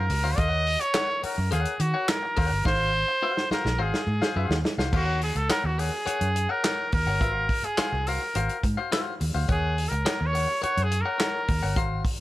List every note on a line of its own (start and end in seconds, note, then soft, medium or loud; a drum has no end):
0.00 0.39 A#4 loud
0.09 0.24 C#2 medium
0.09 muted clean electric guitar stroke soft
0.09 open hi-hat medium
0.24 0.37 D2 medium
0.24 0.37 F#4 medium
0.24 0.38 C5 medium
0.24 0.38 F5 medium
0.37 0.76 D#2 medium
0.37 0.48 A4 medium
0.37 0.49 C5 medium
0.37 0.82 D#5 loud
0.37 0.49 F5 medium
0.37 kick loud
0.37 closed hi-hat loud
0.48 0.64 A#4 medium
0.48 0.64 C#5 medium
0.48 0.65 F#5 medium
0.66 open hi-hat medium
0.80 1.23 C#5 loud
0.80 muted clean electric guitar stroke soft
0.80 closed hi-hat medium
0.94 1.16 A#4 loud
0.94 1.08 C#5 medium
0.94 1.07 F#5 medium
0.94 snare loud
0.94 clap loud
0.94 closed hi-hat medium
1.09 muted clean electric guitar stroke soft
1.22 1.39 A#4 medium
1.22 1.50 A#4 medium
1.22 1.37 C#5 medium
1.22 1.36 F#5 medium
1.22 muted fingered electric bass stroke soft
1.22 open hi-hat medium
1.37 1.50 F#2 medium
1.37 muted clean electric guitar stroke soft
1.51 1.64 D#2 medium
1.51 1.82 G#4 medium
1.51 1.73 A#4 medium
1.51 1.73 C#5 medium
1.51 1.73 F#5 loud
1.51 closed hi-hat loud
1.65 closed hi-hat medium
1.80 1.92 D#3 loud
1.80 2.10 F#4 medium
1.80 muted clean electric guitar stroke medium
1.80 closed hi-hat medium
1.94 2.07 A#4 medium
1.94 2.07 C#5 medium
1.94 2.08 F#5 medium
2.08 2.66 A#4 medium
2.08 muted clean electric guitar stroke soft
2.08 snare loud
2.08 clap loud
2.08 closed hi-hat medium
2.23 muted clean electric guitar stroke soft
2.36 2.50 D#2 medium
2.36 2.58 A#4 medium
2.36 2.50 C#5 medium
2.36 2.50 F#5 medium
2.36 kick medium
2.36 open hi-hat medium
2.51 2.64 G1 medium
2.51 muted clean electric guitar stroke soft
2.65 3.03 G#1 loud
2.65 2.92 F#4 medium
2.65 2.92 C5 medium
2.65 3.47 C5 loud
2.65 2.92 F5 medium
2.65 kick loud
2.65 snare medium
3.08 muted clean electric guitar stroke soft
3.22 3.44 F#4 medium
3.22 3.37 C5 medium
3.22 3.36 F5 medium
3.37 muted clean electric guitar stroke soft
3.37 snare medium
3.51 3.68 F#4 medium
3.51 3.83 A#4 medium
3.51 3.65 C5 medium
3.51 3.64 F5 medium
3.51 muted fingered electric bass stroke soft
3.51 snare medium
3.65 3.79 A#1 medium
3.65 muted clean electric guitar stroke soft
3.65 snare medium
3.78 3.92 G#1 medium
3.78 4.00 F#4 medium
3.78 4.66 G#4 medium
3.78 4.00 C5 loud
3.78 4.01 F5 loud
3.94 snare medium
4.07 4.20 G#2 medium
4.07 muted clean electric guitar stroke medium
4.22 4.35 F#4 soft
4.22 4.35 C5 medium
4.22 4.35 F5 medium
4.22 snare medium
4.36 4.49 F#2 loud
4.36 4.57 F#4 medium
4.36 4.58 C5 medium
4.36 4.58 F5 medium
4.49 4.62 D#2 medium
4.49 snare medium
4.64 muted clean electric guitar stroke soft
4.64 snare loud
4.78 4.91 C2 medium
4.78 4.93 F#4 soft
4.78 4.94 C5 soft
4.78 4.94 F5 medium
4.78 snare loud
4.93 5.30 D#2 loud
4.93 5.21 F#4 loud
4.93 5.04 A4 medium
4.93 5.05 C5 medium
4.93 5.05 F5 medium
4.93 kick loud
4.93 crash medium
5.04 5.19 A#4 medium
5.04 5.20 C#5 medium
5.04 5.20 F#5 medium
5.21 5.38 G#4 medium
5.21 open hi-hat medium
5.35 5.48 C#2 medium
5.35 5.50 A4 medium
5.35 muted clean electric guitar stroke soft
5.35 closed hi-hat soft
5.49 5.71 A#4 medium
5.49 5.67 A#4 loud
5.49 5.64 C#5 medium
5.49 5.63 F#5 loud
5.49 muted fingered electric bass stroke soft
5.49 snare loud
5.49 clap loud
5.49 closed hi-hat medium
5.64 5.89 D#2 medium
5.64 5.81 F#4 medium
5.64 muted clean electric guitar stroke soft
5.78 6.52 G#4 loud
5.78 5.95 A#4 medium
5.78 5.91 C#5 medium
5.78 5.91 F#5 medium
5.78 open hi-hat medium
5.92 muted clean electric guitar stroke soft
6.06 6.28 A#4 medium
6.06 6.28 C#5 medium
6.06 6.28 F#5 medium
6.06 muted fingered electric bass stroke soft
6.06 closed hi-hat loud
6.21 6.46 F#2 medium
6.21 closed hi-hat soft
6.36 muted clean electric guitar stroke soft
6.36 closed hi-hat medium
6.49 6.62 A#4 soft
6.49 6.93 A#4 loud
6.49 6.63 C#5 medium
6.49 6.64 F#5 medium
6.64 6.85 A#4 medium
6.64 6.86 C#5 medium
6.64 6.86 F#5 medium
6.64 snare loud
6.64 clap medium
6.64 closed hi-hat medium
6.92 7.05 D#2 medium
6.92 7.66 A#4 loud
6.92 muted clean electric guitar stroke soft
6.92 kick medium
6.92 open hi-hat medium
7.06 7.21 G1 loud
7.06 7.20 A#4 soft
7.06 7.21 C#5 medium
7.06 7.21 F#5 medium
7.21 7.46 G#1 medium
7.21 7.32 F4 medium
7.21 7.32 B4 medium
7.21 7.33 E5 medium
7.21 kick loud
7.21 closed hi-hat loud
7.32 7.47 F#4 medium
7.32 7.47 C5 medium
7.32 7.47 F5 medium
7.49 kick medium
7.49 open hi-hat medium
7.63 8.09 G#4 loud
7.63 muted fingered electric bass stroke soft
7.63 muted clean electric guitar stroke soft
7.63 closed hi-hat medium
7.77 7.99 F#4 medium
7.77 7.93 C5 medium
7.77 7.92 F5 loud
7.77 muted fingered electric bass stroke soft
7.77 snare loud
7.77 clap medium
7.77 closed hi-hat medium
7.92 8.17 C2 medium
7.92 muted clean electric guitar stroke soft
8.07 8.24 F#4 medium
8.07 8.64 A#4 medium
8.07 8.22 C5 medium
8.07 8.21 F5 medium
8.07 open hi-hat medium
8.22 muted clean electric guitar stroke soft
8.35 8.48 G#1 medium
8.35 8.56 F#4 medium
8.35 8.56 C5 medium
8.35 8.57 F5 loud
8.35 closed hi-hat loud
8.49 closed hi-hat soft
8.63 8.76 G#2 medium
8.63 muted clean electric guitar stroke soft
8.63 kick medium
8.63 closed hi-hat medium
8.77 8.90 F#4 medium
8.77 8.91 C5 medium
8.77 8.91 F5 medium
8.92 9.13 F#4 medium
8.92 9.13 C5 medium
8.92 9.13 F5 loud
8.92 snare loud
8.92 clap medium
8.92 closed hi-hat medium
9.20 9.33 D#2 medium
9.20 muted clean electric guitar stroke soft
9.20 open hi-hat medium
9.35 9.47 D2 loud
9.35 9.48 F#4 medium
9.35 9.48 C5 medium
9.35 9.49 F5 medium
9.48 9.86 D#2 loud
9.48 9.90 G#4 loud
9.48 9.75 A#4 medium
9.48 9.75 C#5 medium
9.48 9.75 F#5 medium
9.48 kick loud
9.48 closed hi-hat medium
9.78 open hi-hat medium
9.89 10.04 C#2 medium
9.89 10.27 A#4 medium
9.89 muted clean electric guitar stroke soft
9.89 closed hi-hat medium
10.05 10.27 A#4 loud
10.05 10.19 C#5 loud
10.05 10.18 F#5 medium
10.05 snare loud
10.05 clap medium
10.05 closed hi-hat medium
10.20 10.45 D#2 medium
10.20 muted clean electric guitar stroke soft
10.26 10.63 C#5 loud
10.33 10.50 A#4 medium
10.33 10.47 C#5 medium
10.33 10.47 F#5 medium
10.33 open hi-hat medium
10.48 muted clean electric guitar stroke soft
10.62 10.83 A#4 medium
10.62 10.84 C#5 medium
10.62 10.85 C#5 loud
10.62 10.84 F#5 medium
10.62 muted fingered electric bass stroke soft
10.62 closed hi-hat loud
10.77 11.02 F#2 medium
10.77 closed hi-hat soft
10.83 11.03 G#4 loud
10.91 muted clean electric guitar stroke soft
10.91 closed hi-hat medium
11.01 11.86 A#4 loud
11.05 11.17 A#4 soft
11.05 11.18 C#5 medium
11.05 11.18 F#5 medium
11.18 11.40 A#4 medium
11.18 11.41 C#5 medium
11.18 11.41 F#5 medium
11.18 snare loud
11.18 clap medium
11.18 closed hi-hat medium
11.48 11.61 D#2 medium
11.48 muted clean electric guitar stroke soft
11.48 kick medium
11.48 open hi-hat medium
11.62 11.76 G1 medium
11.62 11.76 A#4 soft
11.62 11.77 C#5 medium
11.62 11.77 F#5 medium
11.76 12.01 G#1 loud
11.76 12.02 F#4 medium
11.76 12.03 C5 medium
11.76 12.03 F5 medium
11.76 kick loud
11.76 closed hi-hat loud
12.05 kick loud
12.05 open hi-hat medium